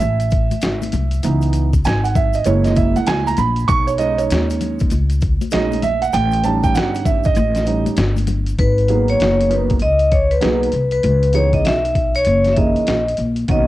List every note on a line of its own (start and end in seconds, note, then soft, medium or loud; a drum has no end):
0.00 0.49 A1 medium
0.00 1.40 E5 medium
0.00 closed hi-hat medium
0.00 high conga medium
0.00 maracas medium
0.20 closed hi-hat soft
0.20 maracas soft
0.30 kick medium
0.30 closed hi-hat medium
0.30 maracas soft
0.51 muted upright bass stroke medium
0.51 closed hi-hat medium
0.51 high conga medium
0.51 maracas soft
0.61 0.92 G#1 medium
0.61 snare loud
0.61 closed hi-hat loud
0.61 maracas medium
0.82 closed hi-hat medium
0.82 high conga medium
0.82 maracas soft
0.92 1.22 C2 medium
0.92 closed hi-hat medium
0.92 high conga medium
0.92 low conga medium
0.92 maracas soft
1.11 closed hi-hat medium
1.11 maracas medium
1.23 1.82 C#2 loud
1.23 1.67 E3 medium
1.23 1.68 B3 medium
1.23 1.68 D#4 medium
1.23 closed hi-hat medium
1.23 maracas medium
1.42 closed hi-hat soft
1.42 maracas soft
1.53 closed hi-hat medium
1.53 maracas soft
1.73 kick medium
1.73 closed hi-hat medium
1.73 maracas medium
1.84 2.44 G#1 medium
1.84 2.03 G#5 medium
1.84 snare loud
1.84 closed hi-hat medium
1.84 maracas medium
2.04 2.16 F#5 medium
2.04 closed hi-hat medium
2.04 maracas soft
2.15 2.36 E5 medium
2.15 kick loud
2.15 closed hi-hat medium
2.15 low conga medium
2.15 maracas medium
2.33 2.47 D#5 medium
2.33 closed hi-hat soft
2.33 maracas soft
2.45 2.94 F#1 loud
2.45 3.34 G#3 medium
2.45 3.34 A#3 medium
2.45 3.34 E4 medium
2.45 2.66 C#5 medium
2.45 closed hi-hat medium
2.45 high conga soft
2.45 maracas medium
2.65 2.77 D#5 medium
2.65 snare soft
2.65 closed hi-hat medium
2.65 maracas soft
2.76 2.95 E5 medium
2.76 kick medium
2.76 closed hi-hat medium
2.76 maracas soft
2.96 3.08 F#5 medium
2.96 muted upright bass stroke soft
2.96 closed hi-hat medium
2.96 high conga medium
2.96 maracas soft
3.07 3.37 C#2 medium
3.07 3.25 G#5 medium
3.07 snare loud
3.07 closed hi-hat loud
3.07 maracas medium
3.27 3.39 A#5 loud
3.27 closed hi-hat medium
3.27 high conga medium
3.27 maracas medium
3.37 3.67 A#1 loud
3.37 3.70 B5 medium
3.37 closed hi-hat medium
3.37 high conga medium
3.37 low conga medium
3.37 maracas medium
3.56 closed hi-hat soft
3.56 maracas soft
3.68 4.27 B1 loud
3.68 3.88 C#6 loud
3.68 kick loud
3.68 closed hi-hat medium
3.68 maracas medium
3.87 3.99 C#5 medium
3.87 closed hi-hat medium
3.87 maracas medium
3.98 4.87 G#3 medium
3.98 4.87 C#4 medium
3.98 4.87 D#4 medium
3.98 4.19 D#5 loud
3.98 closed hi-hat medium
3.98 maracas soft
4.18 4.76 C#5 medium
4.18 closed hi-hat medium
4.18 maracas medium
4.30 4.88 D#2 medium
4.30 snare loud
4.30 closed hi-hat medium
4.30 maracas medium
4.50 closed hi-hat medium
4.50 maracas medium
4.61 closed hi-hat medium
4.61 low conga medium
4.61 maracas soft
4.79 kick medium
4.79 closed hi-hat soft
4.79 maracas soft
4.90 5.39 C#2 medium
4.90 closed hi-hat medium
4.90 high conga soft
4.90 maracas medium
5.10 closed hi-hat soft
5.10 maracas soft
5.21 kick loud
5.21 closed hi-hat medium
5.21 maracas soft
5.41 muted upright bass stroke soft
5.41 closed hi-hat medium
5.41 high conga medium
5.41 maracas soft
5.51 6.11 A#1 medium
5.51 5.80 G#3 medium
5.51 5.80 C#4 medium
5.51 5.80 D#4 medium
5.51 5.84 D#5 medium
5.51 snare loud
5.51 closed hi-hat loud
5.51 maracas medium
5.72 closed hi-hat soft
5.72 high conga medium
5.72 maracas soft
5.82 6.03 E5 medium
5.82 closed hi-hat medium
5.82 high conga medium
5.82 low conga medium
5.82 maracas medium
6.02 6.14 F#5 medium
6.02 closed hi-hat medium
6.02 maracas soft
6.13 6.72 A1 loud
6.13 6.45 G5 loud
6.13 closed hi-hat medium
6.13 maracas medium
6.31 closed hi-hat medium
6.31 maracas soft
6.43 7.32 G3 medium
6.43 7.32 C#4 medium
6.43 7.32 D#4 medium
6.43 6.65 A5 medium
6.43 closed hi-hat medium
6.43 low conga medium
6.43 maracas soft
6.63 6.75 G5 medium
6.63 kick medium
6.63 closed hi-hat medium
6.63 maracas medium
6.75 7.33 G1 medium
6.75 7.07 F#5 medium
6.75 snare loud
6.75 closed hi-hat medium
6.75 maracas medium
6.95 closed hi-hat medium
6.95 maracas soft
7.05 7.24 E5 medium
7.05 kick loud
7.05 closed hi-hat medium
7.05 low conga medium
7.05 maracas medium
7.24 7.82 D#5 medium
7.24 kick medium
7.24 closed hi-hat soft
7.24 maracas soft
7.35 7.84 A1 loud
7.35 closed hi-hat medium
7.35 high conga soft
7.35 maracas medium
7.55 snare soft
7.55 closed hi-hat soft
7.55 maracas soft
7.66 7.94 G3 soft
7.66 7.94 C#4 soft
7.66 7.95 D#4 medium
7.66 closed hi-hat medium
7.66 maracas soft
7.86 muted upright bass stroke soft
7.86 closed hi-hat medium
7.86 high conga medium
7.86 maracas medium
7.97 8.56 G1 loud
7.97 snare loud
7.97 closed hi-hat loud
7.97 maracas medium
8.17 closed hi-hat soft
8.17 high conga medium
8.17 maracas soft
8.27 closed hi-hat medium
8.27 high conga medium
8.27 low conga medium
8.27 maracas medium
8.46 closed hi-hat soft
8.46 maracas soft
8.59 9.17 G#1 loud
8.59 9.06 B4 medium
8.59 kick loud
8.59 closed hi-hat medium
8.78 closed hi-hat soft
8.88 9.48 F#3 medium
8.88 9.49 A#3 medium
8.88 9.48 B3 medium
8.88 9.49 D#4 medium
8.88 9.77 G#4 medium
8.88 closed hi-hat medium
9.08 9.52 C#5 medium
9.08 closed hi-hat soft
9.20 9.78 F#1 medium
9.20 snare loud
9.20 closed hi-hat medium
9.41 closed hi-hat medium
9.49 9.74 F#3 medium
9.49 9.74 A#3 medium
9.49 9.74 B3 medium
9.49 9.75 D#4 medium
9.49 9.75 A#4 medium
9.49 9.65 B4 medium
9.49 closed hi-hat medium
9.70 kick medium
9.70 closed hi-hat medium
9.80 10.40 C#2 medium
9.80 10.13 D#5 medium
9.80 closed hi-hat medium
9.99 closed hi-hat soft
10.12 10.32 C#5 medium
10.12 kick medium
10.12 closed hi-hat medium
10.31 10.91 B4 medium
10.31 closed hi-hat medium
10.41 10.72 B1 medium
10.41 10.66 F#3 medium
10.41 10.66 A#3 medium
10.41 10.66 B3 medium
10.41 10.66 D#4 medium
10.41 10.66 G#4 medium
10.41 snare loud
10.41 closed hi-hat medium
10.63 closed hi-hat soft
10.72 11.02 C2 medium
10.72 closed hi-hat medium
10.91 11.36 B4 loud
10.91 closed hi-hat medium
11.03 11.62 C#2 loud
11.03 closed hi-hat medium
11.23 closed hi-hat soft
11.33 11.72 E3 medium
11.33 11.72 B3 medium
11.33 11.72 C#4 medium
11.33 11.73 D#4 medium
11.33 11.73 G#4 medium
11.33 11.44 C#5 medium
11.33 closed hi-hat medium
11.53 11.65 D#5 medium
11.53 kick medium
11.53 closed hi-hat soft
11.65 12.23 B1 medium
11.65 12.12 E5 loud
11.65 snare loud
11.65 closed hi-hat medium
11.85 closed hi-hat medium
11.95 kick medium
11.95 closed hi-hat medium
12.15 12.53 C#5 loud
12.15 closed hi-hat soft
12.25 12.74 F#1 loud
12.25 closed hi-hat medium
12.44 snare soft
12.44 closed hi-hat soft
12.53 12.95 E3 medium
12.53 12.57 E5 medium
12.53 closed hi-hat medium
12.57 12.95 A#3 medium
12.57 12.95 C#4 medium
12.57 12.96 D#4 medium
12.57 12.96 G#4 medium
12.57 13.14 D#5 medium
12.57 kick medium
12.76 muted upright bass stroke soft
12.76 closed hi-hat soft
12.87 13.17 A#1 medium
12.87 snare loud
12.87 closed hi-hat medium
13.08 closed hi-hat soft
13.17 13.47 A#1 medium
13.17 closed hi-hat medium
13.36 closed hi-hat medium
13.48 13.67 B1 loud
13.48 13.67 D#3 medium
13.48 13.67 A#3 medium
13.48 13.67 B3 medium
13.48 13.67 C#4 medium
13.48 13.67 F#4 medium
13.48 13.67 D#5 medium
13.48 kick loud
13.48 closed hi-hat medium